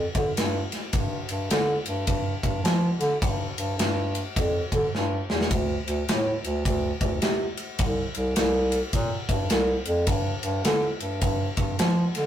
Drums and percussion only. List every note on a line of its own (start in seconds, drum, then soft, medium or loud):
0.15 kick medium
0.15 ride medium
0.37 snare medium
0.37 ride medium
0.72 snare soft
0.72 ride medium
0.93 kick loud
0.93 ride medium
1.29 ride medium
1.50 snare loud
1.50 ride medium
1.86 ride medium
2.07 kick loud
2.07 ride medium
2.43 kick medium
2.43 ride medium
2.65 snare loud
2.65 ride medium
3.01 snare soft
3.01 ride medium
3.22 kick loud
3.22 ride loud
3.58 ride medium
3.79 snare loud
3.79 ride medium
4.15 ride medium
4.36 kick loud
4.36 ride medium
4.72 kick medium
4.72 ride medium
4.95 snare medium
5.30 snare medium
5.41 snare medium
5.51 kick loud
5.51 ride medium
5.88 ride medium
6.09 snare loud
6.09 ride medium
6.44 ride medium
6.65 kick loud
6.65 ride medium
7.01 kick medium
7.01 ride medium
7.22 snare medium
7.22 ride medium
7.57 ride medium
7.79 kick loud
7.79 ride medium
8.15 ride medium
8.36 snare loud
8.36 ride medium
8.72 ride medium
8.93 kick loud
8.93 ride medium
9.29 kick medium
9.29 ride medium
9.50 snare loud
9.50 ride medium
9.85 ride medium
10.07 kick loud
10.07 ride medium
10.43 ride medium
10.65 snare loud
10.65 ride medium
11.00 ride medium
11.21 kick loud
11.21 ride medium
11.57 kick medium
11.57 ride medium
11.79 snare loud
11.79 ride medium
12.15 snare soft
12.15 ride medium